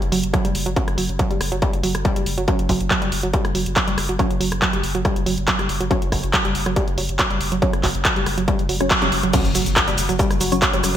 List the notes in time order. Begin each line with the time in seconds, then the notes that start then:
0.02 F#1, closed hi-hat
0.12 F#1 F#3, open hi-hat
0.23 F#1, closed hi-hat
0.34 F#3, kick, cross-stick, closed hi-hat
0.45 F#1 G3, closed hi-hat
0.55 F#1, open hi-hat
0.66 F#1 F#3, closed hi-hat
0.76 F#3 C#4 C#5, kick, closed hi-hat
0.88 F#1, cross-stick, closed hi-hat
0.98 F#1 F#3, open hi-hat
1.09 F#1, closed hi-hat
1.19 F#3, kick, closed hi-hat
1.30 F#1 G3, closed hi-hat
1.41 F#1, cross-stick, open hi-hat
1.52 F#1 F#3, closed hi-hat
1.62 G3, kick, closed hi-hat
1.73 F#1, closed hi-hat
1.83 F#1 F#3, open hi-hat
1.95 F#1, cross-stick, closed hi-hat
2.05 G3, kick, closed hi-hat
2.16 F#1 G3, closed hi-hat
2.26 F#1, open hi-hat
2.38 F#1 F#3, closed hi-hat
2.48 F#3 C#4 C#5, kick, closed hi-hat
2.59 F#1, closed hi-hat
2.69 F#1 F#3, kick, open hi-hat
2.81 F#1, closed hi-hat
2.91 F#3, kick, cross-stick, clap, closed hi-hat
3.02 F#1 G3, closed hi-hat
3.12 F#1, open hi-hat
3.23 F#1 F#3, closed hi-hat
3.33 G3, kick, closed hi-hat
3.45 F#1, cross-stick, closed hi-hat
3.55 F#1 F#3, open hi-hat
3.66 F#1, closed hi-hat
3.76 F#3, kick, clap, closed hi-hat
3.88 F#1 G3, closed hi-hat
3.98 F#1, cross-stick, open hi-hat
4.09 F#1 F#3, closed hi-hat
4.19 F#3 C#4 C#5, kick, closed hi-hat
4.30 F#1, closed hi-hat
4.41 F#1 F#3, open hi-hat
4.52 F#1, cross-stick, closed hi-hat
4.62 F#3, kick, clap, closed hi-hat
4.73 F#1 G3, closed hi-hat
4.83 F#1, open hi-hat
4.95 F#1 F#3, closed hi-hat
5.05 G3, kick, cross-stick, closed hi-hat
5.16 F#1, closed hi-hat
5.26 F#1 F#3, open hi-hat
5.38 F#1, closed hi-hat
5.48 F#3, kick, clap, closed hi-hat
5.59 F#1 G3, cross-stick, closed hi-hat
5.69 F#1, open hi-hat
5.81 F#1 F#3, closed hi-hat
5.91 F#3 C#4 C#5, kick, closed hi-hat
6.02 F#1, closed hi-hat
6.12 F#1 F#3, kick, cross-stick, open hi-hat
6.23 F#1, closed hi-hat
6.34 F#3, kick, clap, closed hi-hat
6.45 F#1 G3, closed hi-hat
6.55 F#1, open hi-hat
6.66 F#1 F#3, cross-stick, closed hi-hat
6.76 G3, kick, closed hi-hat
6.88 F#1, closed hi-hat
6.98 F#1 F#3, open hi-hat
7.09 F#1, closed hi-hat
7.19 F#3, kick, cross-stick, clap, closed hi-hat
7.30 F#1 G3, closed hi-hat
7.41 F#1, open hi-hat
7.52 F#1 F#3, closed hi-hat
7.62 F#3 C#4 C#5, kick, closed hi-hat
7.73 F#1, cross-stick, closed hi-hat
7.83 F#1 F#3, kick, clap, open hi-hat
7.95 F#1, closed hi-hat
8.05 F#3, kick, clap, closed hi-hat
8.16 F#1 G3, closed hi-hat
8.26 F#1, cross-stick, open hi-hat
8.38 F#1 F#3, closed hi-hat
8.48 G3, kick, closed hi-hat
8.59 F#1, closed hi-hat
8.69 F#1 F#3, open hi-hat
8.81 F#1 F#3 C#4 C#5, cross-stick, closed hi-hat
8.91 F#3, kick, clap, closed hi-hat
9.02 F#1 F#3 G3 C#4 C#5, closed hi-hat
9.12 F#1, open hi-hat
9.23 F#1 F#3, closed hi-hat
9.33 F#3 C#4 F#4 C#5, kick, closed hi-hat, crash, impact, shaker
9.45 F#1, closed hi-hat, shaker
9.55 F#1 F#3, open hi-hat, shaker
9.66 F#1, closed hi-hat, shaker
9.76 F#3, kick, cross-stick, clap, closed hi-hat, shaker
9.88 F#1 G3, closed hi-hat, shaker
9.98 F#1, open hi-hat, shaker
10.09 F#1 F#3, closed hi-hat, shaker
10.19 G3, kick, closed hi-hat, shaker
10.30 F#1, cross-stick, closed hi-hat, shaker
10.41 F#1 F#3, open hi-hat, shaker
10.52 F#1 F#3 C#4 C#5, closed hi-hat, shaker
10.62 F#3, kick, clap, closed hi-hat, shaker
10.73 F#1 F#3 G3 C#4 C#5, closed hi-hat, shaker
10.83 F#1, cross-stick, open hi-hat, shaker